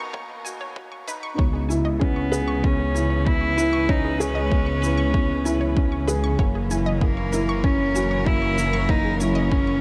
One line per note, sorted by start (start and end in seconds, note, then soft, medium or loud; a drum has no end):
0.00 1.39 B2 medium
0.00 0.13 A#3 medium
0.00 1.39 B3 loud
0.00 1.08 D#4 loud
0.00 1.40 D#4 medium
0.00 0.45 F#4 loud
0.00 1.39 A#4 medium
0.13 0.43 A#3 medium
0.13 0.21 C#5 medium
0.13 kick loud
0.45 0.75 F#4 medium
0.45 0.53 G#5 medium
0.45 shaker medium
0.61 0.69 C#5 medium
0.76 1.06 F#4 medium
0.76 kick loud
0.92 1.04 C#6 medium
1.08 1.37 D#4 loud
1.08 1.19 B4 loud
1.08 shaker medium
1.23 1.31 C#6 loud
1.38 6.36 C#2 medium
1.38 6.39 C#3 medium
1.38 1.69 B3 medium
1.38 1.43 C#5 loud
1.38 kick loud
1.53 1.62 G#4 medium
1.69 2.00 E4 loud
1.69 1.77 G#5 medium
1.69 shaker medium
1.85 1.93 D#5 loud
1.99 9.81 C#4 medium
1.99 2.19 C#4 loud
1.99 2.08 G#4 medium
1.99 kick loud
2.03 2.66 B3 loud
2.16 2.28 C#6 medium
2.32 2.50 G#4 medium
2.32 2.44 B4 loud
2.32 shaker medium
2.48 2.56 C#6 loud
2.53 9.81 E3 medium
2.63 2.93 B3 medium
2.63 3.29 C#4 loud
2.63 2.71 C#5 medium
2.63 kick loud
2.84 6.39 B4 medium
2.95 3.25 E4 medium
2.95 3.03 G#5 medium
2.95 shaker medium
3.10 3.18 C#5 medium
3.26 3.56 B3 medium
3.26 3.92 E4 loud
3.26 kick loud
3.41 3.53 C#6 medium
3.57 3.87 E4 medium
3.57 3.69 B4 loud
3.57 shaker medium
3.73 3.81 C#6 loud
3.89 4.07 C#4 loud
3.89 4.23 D#4 loud
3.89 3.94 C#5 loud
3.89 kick loud
4.05 4.12 G#4 medium
4.20 6.08 C#4 loud
4.20 4.38 G#4 loud
4.20 4.28 G#5 medium
4.20 shaker medium
4.35 4.43 D#5 loud
4.51 4.81 B3 medium
4.51 4.59 G#4 medium
4.51 kick loud
4.66 4.78 C#6 medium
4.82 5.13 E4 medium
4.82 4.94 B4 loud
4.82 shaker medium
4.97 5.06 C#6 loud
5.14 5.44 B3 medium
5.14 5.22 C#5 medium
5.14 kick loud
5.45 5.75 E4 loud
5.45 5.53 G#5 medium
5.45 shaker medium
5.61 5.69 C#5 medium
5.77 5.95 C#4 loud
5.77 kick loud
5.92 6.04 C#6 medium
6.08 6.26 G#4 loud
6.08 6.19 B4 loud
6.08 shaker medium
6.24 6.31 C#6 loud
6.39 9.81 F#1 medium
6.39 9.81 F#3 medium
6.39 6.69 A#3 medium
6.39 6.44 C#5 loud
6.39 kick loud
6.55 6.63 G#4 medium
6.70 7.00 E4 medium
6.70 6.78 G#5 medium
6.70 shaker medium
6.86 6.94 D#5 loud
6.93 9.81 A#4 medium
7.01 7.31 A#3 medium
7.01 7.66 A#3 loud
7.01 7.09 G#4 medium
7.01 kick loud
7.17 7.29 C#6 medium
7.33 7.63 E4 loud
7.33 7.44 A#4 loud
7.33 shaker medium
7.49 7.56 C#6 loud
7.64 7.82 C#4 loud
7.64 8.28 C#4 loud
7.64 7.72 C#5 medium
7.64 kick loud
7.95 8.13 F#4 loud
7.95 8.03 G#5 medium
7.95 shaker medium
8.11 8.19 C#5 medium
8.27 8.57 A#3 medium
8.27 8.91 E4 loud
8.27 kick loud
8.42 8.54 C#6 medium
8.58 8.88 E4 medium
8.58 8.70 A#4 loud
8.58 shaker medium
8.73 8.81 C#6 loud
8.89 9.19 A#3 medium
8.89 9.23 D#4 loud
8.89 8.94 C#5 loud
8.89 kick loud
9.05 9.12 G#4 medium
9.20 9.81 C#4 loud
9.20 9.50 E4 loud
9.20 9.28 G#5 medium
9.20 shaker medium
9.35 9.43 D#5 loud
9.52 9.70 C#4 loud
9.52 9.59 G#4 medium
9.52 kick loud
9.67 9.79 C#6 medium